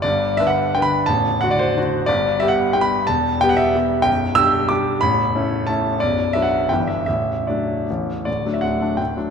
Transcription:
<<
  \new Staff \with { instrumentName = "Grand piano" } { \time 3/4 \key g \major \tempo 4 = 177 d''4 e''16 fis''8. g''16 b''8. | a''4 fis''16 d''16 c''4. | d''4 e''16 fis''8. g''16 b''8. | a''4 g''16 fis''16 e''4. |
\key d \major g''4 e'''4 d'''4 | b''2 a''4 | d''4 e''16 fis''8. g''8 e''8 | e''4 d''4 r4 |
d''8. e''16 fis''4 g''4 | }
  \new Staff \with { instrumentName = "Grand piano" } { \clef bass \time 3/4 \key g \major <g,, g,>4 <d d' b'>4 <d d' b'>4 | <a,,, a,,>4 <d d' fis'>4 <d d' fis'>4 | <g,, g,>4 <g b g'>4 <g b g'>4 | <e,, e,>4 <g b g'>4 <g b g'>4 |
\key d \major <b,,, b,,>4 <g d' g'>4 <g d' g'>4 | <a,,, a,,>4 <a cis' e'>4 <a cis' e'>4 | <b,,, b,,>4 <fis b d'>4 <g,, g, e b d'>4 | <a,,, a,,>4 <fis a d'>4 <a,,, a,, e a cis'>4 |
<d,, d,>8 <fis a d'>8 <d,, d,>8 <fis a d'>8 <d,, d,>8 <fis a d'>8 | }
>>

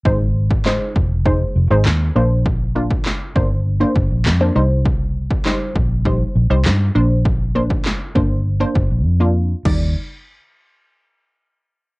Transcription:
<<
  \new Staff \with { instrumentName = "Synth pluck" } { \time 4/4 \key ees \major \tempo 4 = 100 <aes ees' c''>8. r16 <aes ees' c''>8. r16 <aes ees' c''>8 r16 <aes ees' c''>8. <bes d' c''>8~ | <bes d' c''>16 r16 <bes d' f'>8. r16 <bes d' c''>8 r16 <bes d' c''>8. r16 <bes d' c''>16 <g ees' c''>8~ | <g ees' c''>8. r16 <g ees' c''>8. r16 <g ees' c''>8 r16 <g ees' c''>8. <bes d' c''>8~ | <bes d' c''>16 r16 <bes d' c''>8. r16 <bes d' c''>8 r16 <bes d' c''>8. r16 <bes d' f'>8 r16 |
<g ees' d''>8 r2. r8 | }
  \new Staff \with { instrumentName = "Fingered electric bass" } { \clef bass \time 4/4 \key ees \major aes,,4. f,,4 f,,16 aes,,16 ees,8 bes,,8~ | bes,,4. g,,4 g,,16 bes,,16 f,8 c,8~ | c,4. bes,,4 bes,,16 c,16 g,8 bes,,8~ | bes,,4. g,,4 g,,16 bes,,16 f,4 |
ees,8 r2. r8 | }
  \new DrumStaff \with { instrumentName = "Drums" } \drummode { \time 4/4 bd8. bd16 <hc sn>8 bd8 bd4 <hc sn>4 | bd8. bd16 <hc sn>8 bd8 r8 bd8 <hc sn>4 | bd8. bd16 <hc sn>8 bd8 bd4 <hc sn>4 | bd8. bd16 <hc sn>8 bd8 r8 bd8 r4 |
<cymc bd>4 r4 r4 r4 | }
>>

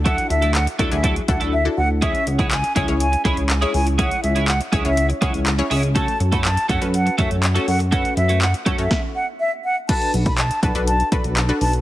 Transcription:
<<
  \new Staff \with { instrumentName = "Flute" } { \time 4/4 \key b \dorian \tempo 4 = 122 fis''8 e''8 fis''16 r8 e''8 r16 fis''16 r16 e''16 r16 fis''16 r16 | e''8 r16 fis''16 gis''8 gis''16 r16 gis''8 b''16 r8. gis''16 r16 | fis''8 e''8 fis''16 r8 e''8 r16 fis''16 r4 r16 | a''8 r16 b''16 a''8 fis''16 r16 fis''8 e''16 r8. fis''16 r16 |
fis''8 e''8 fis''16 r8 e''8 r16 fis''16 r16 e''16 r16 fis''16 r16 | a''8 r16 b''16 a''8 a''16 r16 a''8 b''16 r8. a''16 r16 | }
  \new Staff \with { instrumentName = "Synth pluck" } { \time 4/4 \key b \dorian <d' e' fis' a'>4 r8 <d' e' fis' a'>16 <d' e' fis' gis'>8 r16 <d' e' fis' a'>8 r16 <d' e' fis' a'>8 r16 | <cis' e' gis' cis''>4 r8 <cis' e' gis' cis''>16 <cis' e' gis' cis''>8 r16 <cis' e' gis' cis''>8 r16 <cis' e' gis' cis''>8 r16 | <cis' e' gis' cis''>4 r8 <cis' e' gis' cis''>16 <cis' e' gis' cis''>8 r16 <cis' e' gis' cis''>8 r16 <cis' e' gis' cis''>8 r16 | <cis' fis' a' cis''>4 r8 <cis' fis' a' cis''>16 <cis' fis' a' b'>8 r16 <cis' fis' a' cis''>8 r16 <cis' fis' a' cis''>8 r16 |
<cis' fis' a' b'>4 r8 <cis' fis' a' cis''>16 <cis' fis' a' cis''>16 r2 | <d' fis' a' b'>4 r8 <d' fis' a' b'>16 <d' fis' a' b'>8 r16 <d' fis' a' b'>8 r16 <d' fis' a' b'>8 r16 | }
  \new Staff \with { instrumentName = "Clean electric guitar" } { \time 4/4 \key b \dorian <fis a e' a'>16 r8 <fis a e' a'>16 r8 <fis a e' a'>16 r16 <fis a e' a'>16 r8 <fis a e' a'>16 r4 | <gis cis' e' gis'>16 r8 <gis cis' e' gis'>16 r8 <gis cis' e' gis'>16 r8. <gis cis' e' gis'>16 r8 <gis cis' e' gis'>16 r8 | <gis cis' e' gis'>16 r8 <gis cis' e' gis'>16 r8 <gis cis' e' gis'>16 r8. <gis cis' e' gis'>16 r8. <gis cis' e' gis'>16 r16 | <a cis' fis' a'>16 r8 <a cis' fis' a'>16 r8 <a cis' fis' a'>16 r8. <a cis' fis' a'>16 r8 <a cis' fis' a'>16 r8 |
<a cis' fis' a'>16 r8 <a cis' fis' a'>16 r8 <a cis' fis' a'>16 r2 r16 | r1 | }
  \new Staff \with { instrumentName = "Analog synth bass" } { \clef bass \time 4/4 \key b \dorian d,8 d,4 d,16 d,8. d,16 d,8. d,8~ | d,8 cis,4 cis,16 cis,8. cis,16 cis,8. cis,8~ | cis,8 cis,4 cis,16 cis,8. cis,16 cis,8. cis,8~ | cis,8 fis,4 fis,16 fis,8. fis,16 fis,8. fis,8~ |
fis,8 fis,4 fis,16 fis,16 r2 | r8 b,,4 b,,16 b,,8. b,,16 b,,8. b,,8 | }
  \new DrumStaff \with { instrumentName = "Drums" } \drummode { \time 4/4 <hh bd>16 hh16 hh16 hh16 <hc hh>16 hh16 <hh bd>16 hh16 <hh bd>16 hh16 <hh bd>16 hh16 r4 | <hh bd>16 hh16 hh16 <hh bd>16 <hc hh>16 hh16 <hh bd>16 hh16 hh16 hh16 <hh bd>16 hh16 <hc hh>16 hh16 hho16 hh16 | <hh bd>16 hh16 hh16 hh16 <hc hh>16 hh16 <hh bd>16 hh16 hh16 hh16 <hh bd>16 hh16 <hc hh>16 hh16 hho16 hh16 | <hh bd>16 hh16 hh16 <hh bd>16 <hc hh>16 hh16 <hh bd>16 hh16 hh16 hh16 <hh bd>16 hh16 <hc hh>16 hh16 hho16 hh16 |
<hh bd>16 hh16 hh16 hh16 <hc hh>16 hh16 <hh bd>16 hh16 <bd sn>4 r4 | <cymc hh bd>16 hh16 hh16 <hh bd>16 <hc hh>16 hh16 <hh bd>16 hh16 hh16 hh16 <hh bd>16 hh16 <hc hh>16 hh16 hho16 hh16 | }
>>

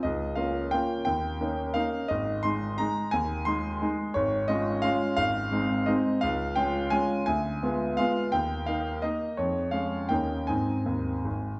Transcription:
<<
  \new Staff \with { instrumentName = "Grand piano" } { \time 3/4 \key aes \major \tempo 4 = 172 ees''4 f''4 g''4 | g''2 f''4 | ees''4 c'''4 bes''4 | aes''4 c'''2 |
des''4 ees''4 f''4 | f''2 ees''4 | f''4 g''4 aes''4 | aes''2 f''4 |
g''4 f''4 ees''4 | des''4 f''4 g''4 | aes''2. | }
  \new Staff \with { instrumentName = "Grand piano" } { \time 3/4 \key aes \major des,4 <bes des' f'>4 <bes des' f'>4 | ees,4 <bes des' ees'>4 <bes des' ees'>4 | aes,,4 <aes ees'>4 <aes ees'>4 | ees,4 <aes ees'>4 <aes ees'>4 |
aes,,4 <aes des' f'>4 <aes des' f'>4 | aes,,4 <aes c' ees'>4 <aes c' ees'>4 | des,4 <aes des' f'>4 <aes des' f'>4 | d,4 <aes b f'>4 <aes b f'>4 |
ees,4 <bes ees'>4 <bes ees'>4 | f,4 <aes des'>4 <ees, bes des' ees'>4 | <aes, c' ees'>4 ees,4 aes,,4 | }
>>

